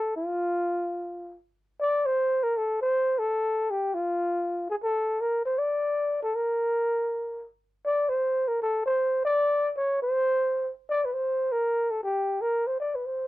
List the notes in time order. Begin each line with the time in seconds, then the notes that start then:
Already playing: A4
0.16 F4
1.81 D5
2.05 C5
2.43 A#4
2.57 A4
2.81 C5
3.18 A4
3.70 G4
3.94 F4
4.70 G#4
4.83 A4
5.21 A#4
5.45 C5
5.58 D5
6.22 A4
6.35 A#4
7.86 D5
8.09 C5
8.48 A#4
8.62 A4
8.86 C5
9.25 D5
9.76 C#5
10.02 C5
10.90 D5
11.05 B4
11.13 C5
11.52 A#4
11.91 A4
12.03 G4
12.41 A#4
12.67 C5
12.80 D5
12.95 B4
13.05 C5